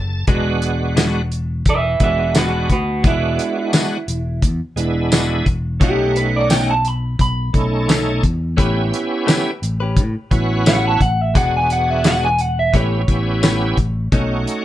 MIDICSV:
0, 0, Header, 1, 7, 480
1, 0, Start_track
1, 0, Tempo, 692042
1, 198, Time_signature, 4, 2, 24, 8
1, 10161, End_track
2, 0, Start_track
2, 0, Title_t, "Clean electric guitar"
2, 0, Program_c, 0, 27
2, 1172, Note_on_c, 0, 71, 80
2, 1178, Note_on_c, 0, 76, 87
2, 1400, Note_off_c, 0, 76, 0
2, 1404, Note_off_c, 0, 71, 0
2, 1412, Note_on_c, 0, 71, 67
2, 1413, Note_on_c, 0, 76, 72
2, 1628, Note_off_c, 0, 71, 0
2, 1637, Note_off_c, 0, 76, 0
2, 1650, Note_on_c, 0, 66, 70
2, 1653, Note_on_c, 0, 71, 89
2, 1866, Note_off_c, 0, 66, 0
2, 1878, Note_off_c, 0, 71, 0
2, 1887, Note_on_c, 0, 66, 76
2, 1892, Note_on_c, 0, 71, 87
2, 2105, Note_off_c, 0, 66, 0
2, 2117, Note_off_c, 0, 71, 0
2, 2129, Note_on_c, 0, 64, 95
2, 3054, Note_off_c, 0, 64, 0
2, 4049, Note_on_c, 0, 67, 81
2, 4275, Note_off_c, 0, 67, 0
2, 4279, Note_on_c, 0, 71, 68
2, 4401, Note_off_c, 0, 71, 0
2, 4413, Note_on_c, 0, 74, 65
2, 4510, Note_off_c, 0, 74, 0
2, 4512, Note_on_c, 0, 79, 83
2, 4638, Note_off_c, 0, 79, 0
2, 4651, Note_on_c, 0, 81, 80
2, 4770, Note_off_c, 0, 81, 0
2, 4770, Note_on_c, 0, 83, 80
2, 4995, Note_off_c, 0, 83, 0
2, 5003, Note_on_c, 0, 83, 88
2, 5931, Note_off_c, 0, 83, 0
2, 7410, Note_on_c, 0, 78, 96
2, 7527, Note_off_c, 0, 78, 0
2, 7543, Note_on_c, 0, 81, 69
2, 7640, Note_off_c, 0, 81, 0
2, 7643, Note_on_c, 0, 78, 80
2, 7778, Note_off_c, 0, 78, 0
2, 7778, Note_on_c, 0, 76, 71
2, 7879, Note_off_c, 0, 76, 0
2, 7888, Note_on_c, 0, 78, 92
2, 8006, Note_off_c, 0, 78, 0
2, 8023, Note_on_c, 0, 80, 79
2, 8122, Note_off_c, 0, 80, 0
2, 8132, Note_on_c, 0, 78, 89
2, 8256, Note_off_c, 0, 78, 0
2, 8256, Note_on_c, 0, 76, 76
2, 8358, Note_off_c, 0, 76, 0
2, 8373, Note_on_c, 0, 78, 83
2, 8489, Note_off_c, 0, 78, 0
2, 8495, Note_on_c, 0, 80, 87
2, 8608, Note_off_c, 0, 80, 0
2, 8608, Note_on_c, 0, 78, 82
2, 8727, Note_off_c, 0, 78, 0
2, 8734, Note_on_c, 0, 76, 78
2, 8848, Note_off_c, 0, 76, 0
2, 8848, Note_on_c, 0, 73, 89
2, 9775, Note_off_c, 0, 73, 0
2, 10161, End_track
3, 0, Start_track
3, 0, Title_t, "Tonewheel organ"
3, 0, Program_c, 1, 16
3, 0, Note_on_c, 1, 81, 66
3, 175, Note_off_c, 1, 81, 0
3, 194, Note_on_c, 1, 56, 81
3, 196, Note_on_c, 1, 59, 80
3, 203, Note_on_c, 1, 62, 77
3, 207, Note_on_c, 1, 66, 93
3, 841, Note_off_c, 1, 56, 0
3, 843, Note_off_c, 1, 59, 0
3, 846, Note_off_c, 1, 62, 0
3, 848, Note_off_c, 1, 66, 0
3, 1389, Note_on_c, 1, 56, 72
3, 1389, Note_on_c, 1, 59, 66
3, 1396, Note_on_c, 1, 62, 65
3, 1400, Note_on_c, 1, 66, 78
3, 1873, Note_off_c, 1, 56, 0
3, 1873, Note_off_c, 1, 59, 0
3, 1876, Note_off_c, 1, 62, 0
3, 1879, Note_off_c, 1, 66, 0
3, 2100, Note_on_c, 1, 56, 70
3, 2104, Note_on_c, 1, 59, 64
3, 2107, Note_on_c, 1, 62, 65
3, 2114, Note_on_c, 1, 66, 79
3, 2754, Note_off_c, 1, 56, 0
3, 2756, Note_off_c, 1, 59, 0
3, 2757, Note_off_c, 1, 62, 0
3, 2761, Note_off_c, 1, 66, 0
3, 3303, Note_on_c, 1, 56, 82
3, 3309, Note_on_c, 1, 59, 77
3, 3314, Note_on_c, 1, 62, 73
3, 3317, Note_on_c, 1, 64, 89
3, 3790, Note_off_c, 1, 56, 0
3, 3793, Note_off_c, 1, 59, 0
3, 3795, Note_off_c, 1, 62, 0
3, 3797, Note_off_c, 1, 64, 0
3, 4021, Note_on_c, 1, 57, 68
3, 4023, Note_on_c, 1, 61, 64
3, 4027, Note_on_c, 1, 63, 65
3, 4032, Note_on_c, 1, 78, 76
3, 4674, Note_off_c, 1, 57, 0
3, 4675, Note_off_c, 1, 61, 0
3, 4677, Note_off_c, 1, 63, 0
3, 4680, Note_off_c, 1, 78, 0
3, 5223, Note_on_c, 1, 57, 73
3, 5229, Note_on_c, 1, 61, 66
3, 5235, Note_on_c, 1, 63, 65
3, 5236, Note_on_c, 1, 69, 78
3, 5710, Note_off_c, 1, 57, 0
3, 5713, Note_off_c, 1, 61, 0
3, 5715, Note_off_c, 1, 63, 0
3, 5716, Note_off_c, 1, 69, 0
3, 5941, Note_on_c, 1, 61, 76
3, 5942, Note_on_c, 1, 59, 87
3, 5949, Note_on_c, 1, 64, 80
3, 5951, Note_on_c, 1, 67, 92
3, 6594, Note_off_c, 1, 61, 0
3, 6595, Note_off_c, 1, 59, 0
3, 6598, Note_off_c, 1, 64, 0
3, 6599, Note_off_c, 1, 67, 0
3, 7148, Note_on_c, 1, 59, 86
3, 7151, Note_on_c, 1, 61, 81
3, 7153, Note_on_c, 1, 64, 77
3, 7159, Note_on_c, 1, 66, 90
3, 7632, Note_off_c, 1, 59, 0
3, 7634, Note_off_c, 1, 61, 0
3, 7635, Note_off_c, 1, 64, 0
3, 7638, Note_off_c, 1, 66, 0
3, 7865, Note_on_c, 1, 59, 68
3, 7872, Note_on_c, 1, 62, 63
3, 7880, Note_on_c, 1, 66, 61
3, 7880, Note_on_c, 1, 68, 75
3, 8517, Note_off_c, 1, 59, 0
3, 8521, Note_off_c, 1, 62, 0
3, 8524, Note_off_c, 1, 66, 0
3, 8524, Note_off_c, 1, 68, 0
3, 8825, Note_on_c, 1, 59, 73
3, 8832, Note_on_c, 1, 61, 66
3, 8835, Note_on_c, 1, 64, 69
3, 8841, Note_on_c, 1, 67, 80
3, 9026, Note_off_c, 1, 59, 0
3, 9029, Note_off_c, 1, 61, 0
3, 9031, Note_off_c, 1, 64, 0
3, 9034, Note_off_c, 1, 67, 0
3, 9066, Note_on_c, 1, 59, 69
3, 9070, Note_on_c, 1, 61, 70
3, 9073, Note_on_c, 1, 64, 67
3, 9081, Note_on_c, 1, 67, 82
3, 9552, Note_off_c, 1, 59, 0
3, 9554, Note_off_c, 1, 61, 0
3, 9555, Note_off_c, 1, 64, 0
3, 9560, Note_off_c, 1, 67, 0
3, 9794, Note_on_c, 1, 57, 80
3, 9794, Note_on_c, 1, 61, 78
3, 9803, Note_on_c, 1, 63, 75
3, 9804, Note_on_c, 1, 66, 95
3, 10161, Note_off_c, 1, 57, 0
3, 10161, Note_off_c, 1, 61, 0
3, 10161, Note_off_c, 1, 63, 0
3, 10161, Note_off_c, 1, 66, 0
3, 10161, End_track
4, 0, Start_track
4, 0, Title_t, "Clean electric guitar"
4, 0, Program_c, 2, 27
4, 193, Note_on_c, 2, 52, 80
4, 198, Note_on_c, 2, 56, 80
4, 202, Note_on_c, 2, 62, 77
4, 207, Note_on_c, 2, 66, 84
4, 346, Note_off_c, 2, 52, 0
4, 349, Note_off_c, 2, 56, 0
4, 350, Note_off_c, 2, 62, 0
4, 353, Note_off_c, 2, 66, 0
4, 670, Note_on_c, 2, 52, 81
4, 676, Note_on_c, 2, 56, 81
4, 678, Note_on_c, 2, 62, 87
4, 683, Note_on_c, 2, 66, 92
4, 824, Note_off_c, 2, 52, 0
4, 827, Note_off_c, 2, 56, 0
4, 828, Note_off_c, 2, 62, 0
4, 831, Note_off_c, 2, 66, 0
4, 1635, Note_on_c, 2, 52, 74
4, 1642, Note_on_c, 2, 56, 80
4, 1645, Note_on_c, 2, 62, 84
4, 1648, Note_on_c, 2, 66, 80
4, 1787, Note_off_c, 2, 52, 0
4, 1790, Note_off_c, 2, 56, 0
4, 1791, Note_off_c, 2, 62, 0
4, 1793, Note_off_c, 2, 66, 0
4, 2588, Note_on_c, 2, 52, 73
4, 2594, Note_on_c, 2, 56, 75
4, 2597, Note_on_c, 2, 62, 71
4, 2602, Note_on_c, 2, 66, 86
4, 2742, Note_off_c, 2, 52, 0
4, 2746, Note_off_c, 2, 56, 0
4, 2747, Note_off_c, 2, 62, 0
4, 2750, Note_off_c, 2, 66, 0
4, 3552, Note_on_c, 2, 52, 80
4, 3556, Note_on_c, 2, 56, 89
4, 3562, Note_on_c, 2, 62, 93
4, 3565, Note_on_c, 2, 66, 92
4, 3704, Note_off_c, 2, 52, 0
4, 3706, Note_off_c, 2, 56, 0
4, 3709, Note_off_c, 2, 62, 0
4, 3711, Note_off_c, 2, 66, 0
4, 4034, Note_on_c, 2, 47, 68
4, 4039, Note_on_c, 2, 57, 65
4, 4042, Note_on_c, 2, 61, 67
4, 4048, Note_on_c, 2, 63, 67
4, 4185, Note_off_c, 2, 47, 0
4, 4188, Note_off_c, 2, 57, 0
4, 4189, Note_off_c, 2, 61, 0
4, 4192, Note_off_c, 2, 63, 0
4, 4513, Note_on_c, 2, 47, 75
4, 4517, Note_on_c, 2, 57, 71
4, 4522, Note_on_c, 2, 61, 79
4, 4525, Note_on_c, 2, 63, 73
4, 4665, Note_off_c, 2, 47, 0
4, 4667, Note_off_c, 2, 57, 0
4, 4669, Note_off_c, 2, 61, 0
4, 4670, Note_off_c, 2, 63, 0
4, 5469, Note_on_c, 2, 47, 74
4, 5475, Note_on_c, 2, 57, 75
4, 5477, Note_on_c, 2, 61, 83
4, 5479, Note_on_c, 2, 63, 90
4, 5623, Note_off_c, 2, 47, 0
4, 5626, Note_off_c, 2, 57, 0
4, 5627, Note_off_c, 2, 61, 0
4, 5628, Note_off_c, 2, 63, 0
4, 5946, Note_on_c, 2, 57, 71
4, 5950, Note_on_c, 2, 61, 81
4, 5954, Note_on_c, 2, 67, 80
4, 5961, Note_on_c, 2, 71, 91
4, 6101, Note_off_c, 2, 57, 0
4, 6103, Note_off_c, 2, 61, 0
4, 6105, Note_off_c, 2, 67, 0
4, 6109, Note_off_c, 2, 71, 0
4, 6431, Note_on_c, 2, 57, 88
4, 6437, Note_on_c, 2, 61, 89
4, 6441, Note_on_c, 2, 67, 95
4, 6445, Note_on_c, 2, 71, 93
4, 6584, Note_off_c, 2, 57, 0
4, 6587, Note_off_c, 2, 61, 0
4, 6589, Note_off_c, 2, 67, 0
4, 6591, Note_off_c, 2, 71, 0
4, 6799, Note_on_c, 2, 71, 49
4, 6810, Note_on_c, 2, 67, 50
4, 6818, Note_on_c, 2, 61, 44
4, 6939, Note_off_c, 2, 71, 0
4, 6944, Note_off_c, 2, 67, 0
4, 6948, Note_off_c, 2, 61, 0
4, 7399, Note_on_c, 2, 57, 80
4, 7401, Note_on_c, 2, 61, 77
4, 7408, Note_on_c, 2, 67, 79
4, 7410, Note_on_c, 2, 71, 89
4, 7548, Note_off_c, 2, 57, 0
4, 7549, Note_off_c, 2, 61, 0
4, 7552, Note_off_c, 2, 67, 0
4, 7553, Note_off_c, 2, 71, 0
4, 7874, Note_on_c, 2, 52, 72
4, 7881, Note_on_c, 2, 56, 70
4, 7884, Note_on_c, 2, 62, 75
4, 7888, Note_on_c, 2, 66, 70
4, 8025, Note_off_c, 2, 52, 0
4, 8029, Note_off_c, 2, 56, 0
4, 8031, Note_off_c, 2, 62, 0
4, 8032, Note_off_c, 2, 66, 0
4, 8354, Note_on_c, 2, 52, 75
4, 8361, Note_on_c, 2, 56, 81
4, 8363, Note_on_c, 2, 62, 75
4, 8369, Note_on_c, 2, 66, 82
4, 8506, Note_off_c, 2, 52, 0
4, 8509, Note_off_c, 2, 56, 0
4, 8510, Note_off_c, 2, 62, 0
4, 8513, Note_off_c, 2, 66, 0
4, 8840, Note_on_c, 2, 57, 69
4, 8845, Note_on_c, 2, 61, 76
4, 8849, Note_on_c, 2, 67, 72
4, 8853, Note_on_c, 2, 71, 82
4, 8989, Note_off_c, 2, 57, 0
4, 8991, Note_off_c, 2, 61, 0
4, 8993, Note_off_c, 2, 67, 0
4, 8995, Note_off_c, 2, 71, 0
4, 9315, Note_on_c, 2, 57, 72
4, 9317, Note_on_c, 2, 61, 83
4, 9322, Note_on_c, 2, 67, 81
4, 9327, Note_on_c, 2, 71, 86
4, 9466, Note_off_c, 2, 57, 0
4, 9467, Note_off_c, 2, 61, 0
4, 9470, Note_off_c, 2, 67, 0
4, 9472, Note_off_c, 2, 71, 0
4, 9795, Note_on_c, 2, 47, 73
4, 9803, Note_on_c, 2, 57, 82
4, 9806, Note_on_c, 2, 61, 80
4, 9809, Note_on_c, 2, 63, 90
4, 9947, Note_off_c, 2, 47, 0
4, 9951, Note_off_c, 2, 57, 0
4, 9952, Note_off_c, 2, 61, 0
4, 9953, Note_off_c, 2, 63, 0
4, 10161, End_track
5, 0, Start_track
5, 0, Title_t, "Fingered electric bass"
5, 0, Program_c, 3, 33
5, 0, Note_on_c, 3, 30, 86
5, 178, Note_off_c, 3, 30, 0
5, 190, Note_on_c, 3, 28, 92
5, 1125, Note_off_c, 3, 28, 0
5, 1152, Note_on_c, 3, 28, 101
5, 1378, Note_off_c, 3, 28, 0
5, 1385, Note_on_c, 3, 28, 85
5, 1843, Note_off_c, 3, 28, 0
5, 1871, Note_on_c, 3, 38, 86
5, 2097, Note_off_c, 3, 38, 0
5, 2109, Note_on_c, 3, 28, 94
5, 2336, Note_off_c, 3, 28, 0
5, 2829, Note_on_c, 3, 28, 83
5, 3067, Note_on_c, 3, 40, 89
5, 3077, Note_off_c, 3, 28, 0
5, 3185, Note_off_c, 3, 40, 0
5, 3301, Note_on_c, 3, 28, 90
5, 3760, Note_off_c, 3, 28, 0
5, 3790, Note_on_c, 3, 28, 84
5, 4016, Note_off_c, 3, 28, 0
5, 4028, Note_on_c, 3, 35, 81
5, 4964, Note_off_c, 3, 35, 0
5, 4987, Note_on_c, 3, 35, 98
5, 5214, Note_off_c, 3, 35, 0
5, 5228, Note_on_c, 3, 35, 83
5, 5683, Note_off_c, 3, 35, 0
5, 5709, Note_on_c, 3, 40, 84
5, 5935, Note_off_c, 3, 40, 0
5, 5951, Note_on_c, 3, 33, 90
5, 6177, Note_off_c, 3, 33, 0
5, 6674, Note_on_c, 3, 33, 82
5, 6914, Note_on_c, 3, 45, 90
5, 6925, Note_off_c, 3, 33, 0
5, 7034, Note_off_c, 3, 45, 0
5, 7154, Note_on_c, 3, 33, 92
5, 7607, Note_off_c, 3, 33, 0
5, 7635, Note_on_c, 3, 33, 86
5, 7859, Note_off_c, 3, 33, 0
5, 7872, Note_on_c, 3, 28, 89
5, 8806, Note_off_c, 3, 28, 0
5, 8836, Note_on_c, 3, 33, 94
5, 9060, Note_off_c, 3, 33, 0
5, 9074, Note_on_c, 3, 33, 81
5, 9528, Note_off_c, 3, 33, 0
5, 9553, Note_on_c, 3, 33, 79
5, 9778, Note_off_c, 3, 33, 0
5, 9794, Note_on_c, 3, 35, 86
5, 10019, Note_off_c, 3, 35, 0
5, 10161, End_track
6, 0, Start_track
6, 0, Title_t, "Muted fingered electric bass strokes"
6, 3189, Note_on_c, 9, 29, 35
6, 3258, Note_off_c, 9, 29, 0
6, 7039, Note_on_c, 9, 29, 35
6, 7109, Note_off_c, 9, 29, 0
6, 10161, End_track
7, 0, Start_track
7, 0, Title_t, "Drums"
7, 190, Note_on_c, 9, 42, 75
7, 192, Note_on_c, 9, 36, 102
7, 259, Note_off_c, 9, 42, 0
7, 261, Note_off_c, 9, 36, 0
7, 429, Note_on_c, 9, 42, 60
7, 499, Note_off_c, 9, 42, 0
7, 672, Note_on_c, 9, 42, 77
7, 672, Note_on_c, 9, 54, 102
7, 679, Note_on_c, 9, 38, 105
7, 742, Note_off_c, 9, 42, 0
7, 742, Note_off_c, 9, 54, 0
7, 748, Note_off_c, 9, 38, 0
7, 913, Note_on_c, 9, 42, 55
7, 982, Note_off_c, 9, 42, 0
7, 1148, Note_on_c, 9, 42, 79
7, 1150, Note_on_c, 9, 36, 85
7, 1218, Note_off_c, 9, 42, 0
7, 1220, Note_off_c, 9, 36, 0
7, 1387, Note_on_c, 9, 42, 61
7, 1389, Note_on_c, 9, 36, 79
7, 1456, Note_off_c, 9, 42, 0
7, 1459, Note_off_c, 9, 36, 0
7, 1628, Note_on_c, 9, 42, 77
7, 1628, Note_on_c, 9, 54, 106
7, 1634, Note_on_c, 9, 38, 99
7, 1697, Note_off_c, 9, 42, 0
7, 1697, Note_off_c, 9, 54, 0
7, 1703, Note_off_c, 9, 38, 0
7, 1870, Note_on_c, 9, 36, 68
7, 1871, Note_on_c, 9, 42, 58
7, 1939, Note_off_c, 9, 36, 0
7, 1940, Note_off_c, 9, 42, 0
7, 2109, Note_on_c, 9, 36, 102
7, 2109, Note_on_c, 9, 42, 81
7, 2178, Note_off_c, 9, 42, 0
7, 2179, Note_off_c, 9, 36, 0
7, 2351, Note_on_c, 9, 42, 65
7, 2421, Note_off_c, 9, 42, 0
7, 2588, Note_on_c, 9, 42, 83
7, 2588, Note_on_c, 9, 54, 102
7, 2594, Note_on_c, 9, 38, 98
7, 2657, Note_off_c, 9, 42, 0
7, 2657, Note_off_c, 9, 54, 0
7, 2663, Note_off_c, 9, 38, 0
7, 2831, Note_on_c, 9, 42, 60
7, 2900, Note_off_c, 9, 42, 0
7, 3069, Note_on_c, 9, 36, 83
7, 3069, Note_on_c, 9, 42, 83
7, 3138, Note_off_c, 9, 36, 0
7, 3138, Note_off_c, 9, 42, 0
7, 3310, Note_on_c, 9, 42, 62
7, 3380, Note_off_c, 9, 42, 0
7, 3549, Note_on_c, 9, 42, 77
7, 3549, Note_on_c, 9, 54, 102
7, 3556, Note_on_c, 9, 38, 98
7, 3619, Note_off_c, 9, 42, 0
7, 3619, Note_off_c, 9, 54, 0
7, 3625, Note_off_c, 9, 38, 0
7, 3789, Note_on_c, 9, 36, 73
7, 3790, Note_on_c, 9, 42, 59
7, 3858, Note_off_c, 9, 36, 0
7, 3860, Note_off_c, 9, 42, 0
7, 4029, Note_on_c, 9, 36, 103
7, 4029, Note_on_c, 9, 42, 75
7, 4098, Note_off_c, 9, 36, 0
7, 4098, Note_off_c, 9, 42, 0
7, 4271, Note_on_c, 9, 42, 57
7, 4341, Note_off_c, 9, 42, 0
7, 4509, Note_on_c, 9, 42, 75
7, 4509, Note_on_c, 9, 54, 100
7, 4515, Note_on_c, 9, 38, 99
7, 4578, Note_off_c, 9, 42, 0
7, 4578, Note_off_c, 9, 54, 0
7, 4584, Note_off_c, 9, 38, 0
7, 4749, Note_on_c, 9, 42, 54
7, 4818, Note_off_c, 9, 42, 0
7, 4989, Note_on_c, 9, 36, 83
7, 4990, Note_on_c, 9, 42, 77
7, 5058, Note_off_c, 9, 36, 0
7, 5059, Note_off_c, 9, 42, 0
7, 5230, Note_on_c, 9, 36, 80
7, 5233, Note_on_c, 9, 42, 57
7, 5299, Note_off_c, 9, 36, 0
7, 5302, Note_off_c, 9, 42, 0
7, 5473, Note_on_c, 9, 42, 71
7, 5473, Note_on_c, 9, 54, 100
7, 5479, Note_on_c, 9, 38, 104
7, 5542, Note_off_c, 9, 42, 0
7, 5542, Note_off_c, 9, 54, 0
7, 5548, Note_off_c, 9, 38, 0
7, 5711, Note_on_c, 9, 36, 74
7, 5713, Note_on_c, 9, 42, 60
7, 5780, Note_off_c, 9, 36, 0
7, 5782, Note_off_c, 9, 42, 0
7, 5952, Note_on_c, 9, 36, 103
7, 5957, Note_on_c, 9, 42, 82
7, 6021, Note_off_c, 9, 36, 0
7, 6027, Note_off_c, 9, 42, 0
7, 6198, Note_on_c, 9, 42, 66
7, 6267, Note_off_c, 9, 42, 0
7, 6437, Note_on_c, 9, 42, 80
7, 6437, Note_on_c, 9, 54, 103
7, 6443, Note_on_c, 9, 38, 106
7, 6506, Note_off_c, 9, 42, 0
7, 6506, Note_off_c, 9, 54, 0
7, 6513, Note_off_c, 9, 38, 0
7, 6679, Note_on_c, 9, 42, 59
7, 6748, Note_off_c, 9, 42, 0
7, 6912, Note_on_c, 9, 36, 86
7, 6913, Note_on_c, 9, 42, 84
7, 6982, Note_off_c, 9, 36, 0
7, 6983, Note_off_c, 9, 42, 0
7, 7153, Note_on_c, 9, 36, 76
7, 7155, Note_on_c, 9, 42, 63
7, 7222, Note_off_c, 9, 36, 0
7, 7224, Note_off_c, 9, 42, 0
7, 7396, Note_on_c, 9, 42, 81
7, 7396, Note_on_c, 9, 54, 105
7, 7402, Note_on_c, 9, 38, 106
7, 7465, Note_off_c, 9, 42, 0
7, 7465, Note_off_c, 9, 54, 0
7, 7471, Note_off_c, 9, 38, 0
7, 7633, Note_on_c, 9, 36, 77
7, 7636, Note_on_c, 9, 42, 58
7, 7703, Note_off_c, 9, 36, 0
7, 7705, Note_off_c, 9, 42, 0
7, 7874, Note_on_c, 9, 36, 109
7, 7875, Note_on_c, 9, 42, 86
7, 7943, Note_off_c, 9, 36, 0
7, 7945, Note_off_c, 9, 42, 0
7, 8116, Note_on_c, 9, 42, 62
7, 8185, Note_off_c, 9, 42, 0
7, 8352, Note_on_c, 9, 42, 77
7, 8352, Note_on_c, 9, 54, 98
7, 8359, Note_on_c, 9, 38, 100
7, 8422, Note_off_c, 9, 42, 0
7, 8422, Note_off_c, 9, 54, 0
7, 8428, Note_off_c, 9, 38, 0
7, 8591, Note_on_c, 9, 42, 54
7, 8660, Note_off_c, 9, 42, 0
7, 8834, Note_on_c, 9, 36, 86
7, 8835, Note_on_c, 9, 42, 77
7, 8903, Note_off_c, 9, 36, 0
7, 8904, Note_off_c, 9, 42, 0
7, 9073, Note_on_c, 9, 36, 74
7, 9075, Note_on_c, 9, 42, 58
7, 9143, Note_off_c, 9, 36, 0
7, 9144, Note_off_c, 9, 42, 0
7, 9314, Note_on_c, 9, 42, 70
7, 9314, Note_on_c, 9, 54, 98
7, 9320, Note_on_c, 9, 38, 101
7, 9384, Note_off_c, 9, 42, 0
7, 9384, Note_off_c, 9, 54, 0
7, 9390, Note_off_c, 9, 38, 0
7, 9554, Note_on_c, 9, 36, 75
7, 9554, Note_on_c, 9, 42, 54
7, 9623, Note_off_c, 9, 36, 0
7, 9624, Note_off_c, 9, 42, 0
7, 9795, Note_on_c, 9, 36, 99
7, 9796, Note_on_c, 9, 42, 76
7, 9864, Note_off_c, 9, 36, 0
7, 9865, Note_off_c, 9, 42, 0
7, 10039, Note_on_c, 9, 42, 59
7, 10108, Note_off_c, 9, 42, 0
7, 10161, End_track
0, 0, End_of_file